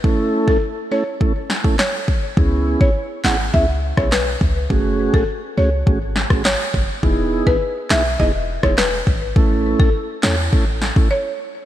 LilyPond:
<<
  \new Staff \with { instrumentName = "Marimba" } { \time 4/4 \key a \lydian \tempo 4 = 103 r8. a'16 r8 cis''16 r4 r16 cis''8. r16 | r8. cis''16 r8 fis''16 r16 e''16 r8 cis''16 b'8. r16 | r8. a'16 r8 cis''16 r4 r16 cis''8. r16 | r8. b'16 r8 e''16 r16 dis''16 r8 cis''16 b'8. r16 |
r8. a'16 r8 cis''16 r4 r16 cis''8. r16 | }
  \new Staff \with { instrumentName = "Tonewheel organ" } { \time 4/4 \key a \lydian <a cis' e' a'>4 r8 <a cis' e' a'>16 r16 <a cis' e' a'>16 r8 <a cis' e' a'>16 r4 | <b cis' e' gis'>4 r8 <b cis' e' gis'>16 r16 <b cis' e' gis'>16 r8 <b cis' e' gis'>16 r4 | <a cis' fis' gis'>4 r8 <a cis' fis' gis'>16 r16 <a cis' fis' gis'>16 r8 <a cis' fis' gis'>16 r4 | <b dis' e' gis'>4 r8 <b dis' e' gis'>16 r16 <b dis' e' gis'>16 r8 <b dis' e' gis'>16 r4 |
<a cis' e' a'>4 r8 <a cis' e' a'>16 r16 <a cis' e' a'>16 r8 <a cis' e' a'>16 r4 | }
  \new Staff \with { instrumentName = "808-style bass" } { \clef bass \time 4/4 \key a \lydian r1 | cis,8. a,,16 r8 gis,,8 cis,8. b,,8. cis,8 | fis,,8. gis,,16 r8 cis,8 gis,,8. gis,,8 r16 fis,,16 r16 | e,,8. gis,,16 r8 b,,8 e,,8. e,,8. gis,,8 |
a,,8. a,,16 r8 e,8 a,,8. a,,16 r4 | }
  \new DrumStaff \with { instrumentName = "Drums" } \drummode { \time 4/4 bd8. bd16 r4 bd8 sn16 bd16 <hc sn>8 bd8 | bd8. bd16 r8 <hc sn>8 bd8. <bd ss>16 <hc sn>8 bd8 | bd8. bd16 r4 bd8 sn16 <bd ss>16 <hc sn>8 bd8 | bd8. bd16 r8 <hc sn>8 bd8. <bd ss>16 <hc sn>8 bd8 |
bd8. bd16 r8 <hc sn>8 bd8 sn16 bd16 r4 | }
>>